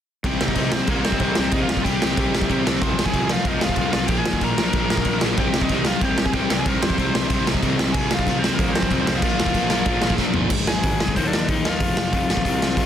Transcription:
0.24 C2 C3 G3 C4 D#4 G4 G5, kick, crash
0.29 G4
0.41 C2, snare
0.48 D#4 D#5, kick
0.55 C2 C3 G3 C4, kick, crash
0.72 C3 G3 C4 C5, snare
0.87 C2 C3 G3 A#3 C4 D#4 A#4, kick, crash
0.91 G4
1.05 C4 C5, snare
1.12 kick
1.20 C2 C3 G3 C4 C5, kick, crash
1.35 C2 C3 G3 C4, snare
1.40 C5
1.51 C2 C3 G3 C4 D#4 D#5, kick, crash
1.56 G4
1.60 F4 F5
1.69 F2, snare
1.77 kick
1.84 C2 C3 G3 C4 G4 G5, kick, crash
2.02 C2 C3 G3 C4, snare
2.17 C2 C3 G3 C4 D#4 G4, kick, crash
2.35 C2, snare
2.42 kick
2.49 C2 C3 G3 C4, kick, crash
2.67 C2 C3 G3 C4, snare
2.82 C2 F2 C3 F3 C4 F4 G#4 C5 C6, kick, crash
2.99 C2, snare
3.05 G#4 G#5, kick
3.13 C2 F2 C3 F3, kick, crash
3.29 F2 C3 F3 F4 F5, snare
3.45 C2 F2 C3 F3 C4 D#4 D#5, kick, crash
3.49 F4 G#4
3.61 F4 F5, snare
3.69 kick
3.76 C2 F2 C3 F3 F4 F5, kick, crash
3.92 C2 F2 C3 F3 F4 F5, snare
4.07 A#1 A#2 D3 F3 G4 G5, kick, crash
4.11 A#3 D4 A#4
4.18 G#4 G#5
4.26 D#2, snare
4.33 kick
4.41 A#1 A#2 F3 A#3 A#4 A#5, kick, crash
4.58 A#1 A#2 F3 A#3, snare
4.73 A#1 A#2 D3 F3 D4, kick, crash
4.77 A#3 A#4
4.90 A#1, snare
4.97 kick
5.05 A#1 A#2 F3, kick, crash
5.09 A#3
5.21 A#1 A#2 F3 A#3, snare
5.37 C2 C3 G3 C4 D#4 G4 G5, kick, crash
5.54 C2, snare
5.61 D#4 D#5, kick
5.69 C2 C3 G3 C4, kick, crash
5.85 C3 G3 C4 F4 F5, snare
6.01 C2 C3 G3 C4 D#4 G4 G5, kick, crash
6.18 snare
6.25 G#4 G#5, kick
6.33 C2 C3 G3 C4 G4 G5, kick, crash
6.50 C2 C3 G3 C4, snare
6.58 G#4 G#5
6.65 C2 C3 G3 C4 D#4 G4 A#4 A#5, kick, crash
6.82 F2 C5 C6, snare
6.90 kick
6.98 C2 C3 G3 C4, kick, crash
7.14 C2 C3 G3 C4 C5 C6, snare
7.30 C2 C3 G3 C4 D#4 G4, kick, crash
7.47 C2, snare
7.54 kick
7.62 C2 C3 G3 C4, kick, crash
7.79 C2 C3 G3 C4, snare
7.93 C2 F2 C3 F3 G#4 G#5, kick, crash
7.97 C4 F4 G#4
8.11 C2 F5, snare
8.16 F4, kick
8.27 C2 F2 C3 F3, kick, crash
8.39 C4 C5
8.43 F2 C3 F3, snare
8.55 F2 A#3 A#4
8.59 C2 C3 F3 C4 F4, kick, crash
8.63 G#4
8.72 C4 C5, snare
8.82 kick
8.91 C2 F2 C3 F3, kick, crash
9.01 C4 C5
9.07 C2 F2 C3 F3, snare
9.17 F4 F5
9.22 A#1 A#2 D3 F3 A#3 D4, kick, crash
9.26 A#4
9.40 D#2, snare
9.46 kick
9.54 A#1 A#2 F3 A#3, kick, crash
9.70 A#1 A#2 F3 A#3, snare
9.86 A#1 A#2 D3 F3 A#3, kick, crash
9.90 D4 A#4
10.02 A#1, snare
10.10 kick
10.18 A#1 A#2 F3 A#3, kick, snare
10.34 G1 A#2 F3 A#3, floor tom
10.50 G#1 G#2 D#3 G#3, kick, crash
10.67 G#1 G#4 G#5, snare
10.83 G#1 G#2 D#3 G#3, kick, open hi-hat
11.00 C2 G#2 D#3 G#3, snare
11.08 kick
11.16 D#2 D#3 A#3 C4 D#4 C5, kick, open hi-hat
11.27 D4 D5
11.33 D#2, snare
11.48 D#2 D#3 A#3 D#4 D#5, kick, open hi-hat
11.65 D#2 D#3 A#3 D#4 F4 F5, snare
11.80 F1 F2 C3 F3, kick, open hi-hat
11.97 F1, snare
12.13 F1 F2 C3 F3, kick, open hi-hat
12.30 A1 F2 C3 F3, snare
12.37 kick
12.45 C2 C3 G3 C4, kick, open hi-hat
12.62 C2, snare
12.77 C2 C3 G3 C4, kick, open hi-hat

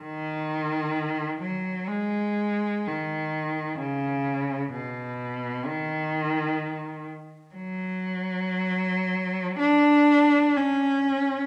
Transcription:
0.00 D#3
1.42 F#3
1.88 G#3
2.87 D#3
3.79 C#3
4.74 B2
5.66 D#3
7.55 F#3
9.59 D4
10.57 C#4

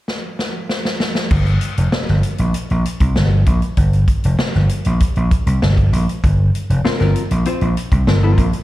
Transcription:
0.08 snare
0.39 snare
0.69 snare
0.85 snare
1.00 snare
1.15 snare
1.31 G1, kick, crash
1.46 closed hi-hat
1.61 closed hi-hat
1.77 F1, closed hi-hat
1.92 muted slap bass stroke, snare
2.08 G1, snare
2.23 closed hi-hat
2.38 A#1, closed hi-hat
2.54 closed hi-hat
2.70 A#1, closed hi-hat
2.85 closed hi-hat
3.00 C2, kick, closed hi-hat
3.16 G1, snare
3.46 A#1, kick, closed hi-hat
3.62 closed hi-hat
3.77 G1, kick, closed hi-hat
3.93 closed hi-hat
4.08 kick, closed hi-hat
4.24 F1, closed hi-hat
4.39 muted slap bass stroke, snare
4.54 G1, snare
4.69 closed hi-hat
4.85 A#1, closed hi-hat
5.00 kick, closed hi-hat
5.16 A#1, closed hi-hat
5.31 kick, closed hi-hat
5.46 C2, closed hi-hat
5.62 G1, snare
5.77 kick, closed hi-hat
5.93 A#1, closed hi-hat
6.09 closed hi-hat
6.24 G1, kick, closed hi-hat
6.55 closed hi-hat
6.70 F1, closed hi-hat
6.85 C4 F4 A#4, muted slap bass stroke, snare
7.00 G1 C4 F4 A#4, snare, closed hi-hat
7.16 closed hi-hat
7.31 A#1, closed hi-hat
7.45 C4 F4 C5, closed hi-hat
7.61 A#1, closed hi-hat
7.77 closed hi-hat
7.92 C2, kick, closed hi-hat
8.07 G1 C4 F4 A#4, snare
8.23 C4 F4 A#4
8.38 A#1, kick, closed hi-hat
8.53 closed hi-hat

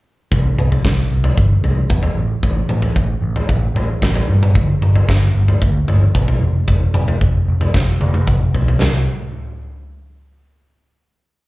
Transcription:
0.32 C2, kick, floor tom
0.58 C2, mid tom
0.72 floor tom
0.85 C2, kick, snare
1.11 C2
1.24 floor tom
1.38 G1, kick
1.64 C2, floor tom
1.90 E2, kick, mid tom
2.03 floor tom
2.18 A1
2.43 A1, kick, floor tom
2.69 A1, mid tom
2.82 floor tom
2.96 A1, kick
3.22 A1
3.36 floor tom
3.49 A1, kick
3.75 A1, floor tom
4.02 A1, kick, snare
4.15 floor tom
4.29 G2
4.43 mid tom
4.55 G1, kick, floor tom
4.81 G1, mid tom
4.96 floor tom
5.09 G1, kick, snare
5.35 G1
5.48 floor tom
5.62 D2, kick
5.88 G1, floor tom
6.15 B1, kick, mid tom
6.28 floor tom
6.42 F1
6.68 F1, kick, floor tom
6.94 F1, mid tom
7.08 floor tom
7.21 F1, kick
7.48 F1
7.61 floor tom
7.74 F1, kick, snare
8.01 F1, high tom
8.14 high tom
8.27 F1, kick, mid tom
8.54 B1, floor tom
8.68 floor tom
8.81 C2, snare, floor tom, splash

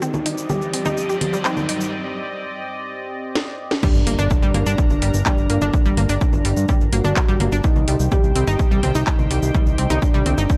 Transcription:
Already playing: G2, riser
0.02 C4 D#4 G4 D5 D#5, shaker
0.14 low conga, shaker
0.26 D#4, open hi-hat
0.38 shaker
0.50 G3 G4, low conga, shaker
0.62 shaker
0.73 C4, open hi-hat
0.86 D#4, low conga, shaker
0.97 shaker
1.09 G4, shaker
1.21 open hi-hat, low conga
1.33 G3, shaker
1.45 C4 D#4, clap, shaker
1.57 low conga, shaker
1.69 D#4, open hi-hat
1.81 shaker
3.35 snare
3.71 snare
3.83 G3 D4 A#4 A#5, kick, crash, impact, low conga, shaker
3.95 G1, shaker
4.07 G1 A#3, open hi-hat
4.19 G1 D4, low conga, shaker
4.31 D4, kick, shaker
4.43 G1 G3, shaker
4.54 G1 A#3, open hi-hat, low conga
4.66 G2 D4, shaker
4.78 kick, shaker
4.90 G1, low conga, shaker
5.02 G1 G3, open hi-hat
5.14 G1, shaker
5.26 G3 D4, kick, clap, low conga, shaker
5.38 G1, shaker
5.50 G1 A#3, open hi-hat
5.62 G1 D4, low conga, shaker
5.73 kick, shaker
5.85 G1 G3, shaker
5.97 G1 A#3, open hi-hat, low conga
6.09 G1 D4, open hi-hat, shaker
6.21 D4, kick, shaker
6.33 G1, low conga, shaker
6.45 G1 G3, open hi-hat
6.57 G2, shaker
6.69 G3, kick, low conga, shaker
6.81 G1, shaker
6.93 G1 A#3 F#4, open hi-hat
7.04 G1 D4, low conga, shaker
7.16 kick, clap, shaker
7.28 G1 G3, shaker
7.40 G1 A#3, open hi-hat, low conga
7.52 G1 D4, shaker
7.64 D#3 D#4 G4 C5 G5, kick, shaker
7.76 C2, low conga, shaker
7.88 C2 G3, open hi-hat
8.00 C2, shaker
8.12 G3 G4, kick, low conga, shaker
8.24 C2, shaker
8.35 C2 C4, open hi-hat
8.47 G1 D#4, low conga, shaker
8.59 kick, shaker
8.71 C2 G3, shaker
8.83 C2 C4, open hi-hat, low conga
8.95 C2 D#4, shaker
9.07 D#4, kick, clap, shaker
9.19 C2, low conga, shaker
9.31 C2 G3, open hi-hat
9.43 C2, shaker
9.54 G3, kick, low conga, shaker
9.66 C2, shaker
9.78 C2 C4, open hi-hat
9.90 C2 D#4, open hi-hat, low conga, shaker
10.02 D4, kick, shaker
10.14 C2 G3, shaker
10.26 C2 C4, open hi-hat, low conga
10.38 G1 D#4, shaker
10.50 kick, shaker

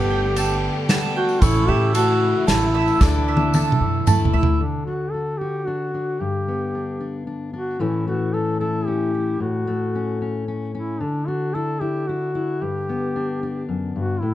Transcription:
Already playing: G1 D3 G3 A3 B3 D4 G4 A4 B4
0.10 G5
0.35 G3 B3 D4 A4 A5, ride, tambourine
0.88 G3 B3 D4 A4 A5, snare, ride, tambourine
1.16 F#4 G5
1.29 tambourine
1.41 A1 A2 C#3 E3 A3 C#4 E4 A4 C#5, kick, ride, tambourine
1.68 A2 G4 E5
1.94 A3 C#4 E4 F#4 A4 A5, ride, tambourine
2.47 A1 A3 C#4 E4 A4 A5, snare, ride, tambourine
2.61 tambourine
2.75 E5
2.88 tambourine
3.01 D2 D3 E3 A3 D4 E4 A4 D5, kick, snare, tambourine
3.14 tambourine
3.28 E5
3.37 high tom
3.54 E3 A3 E4 A4 A5, high tom, tambourine
3.72 mid tom
3.81 F#2
4.06 E2 E3 A3 E4 A4 A5, mid tom, tambourine
4.25 floor tom
4.33 D2 E4 E5
4.43 floor tom
4.60 D3 D4
4.86 D4 F#4
5.11 F#4 A4
5.38 F#4 G4
5.65 D4 F#4
5.94 D4
6.19 G2 G4
6.48 B3
6.75 D4
7.00 D4
7.27 D4
7.53 D4 F#4
7.79 A2 E3 A3 C#4 E4
8.07 A3 F#4
8.33 C#4 A4
8.60 E4 A4
8.86 C#4 G4
9.14 E4
9.40 A2 F#4
9.67 A3
9.95 C#4
10.22 C#4
10.48 C#4
10.74 C#4 E4
11.00 D3 D4
11.27 D4 F#4
11.54 E4 A4
11.80 E4 G4
12.07 E4 F#4
12.35 E4
12.61 G2 G4
12.89 B3
13.16 D4
13.43 D4
13.69 F#2
13.94 G2 F#4
14.20 A2 E4

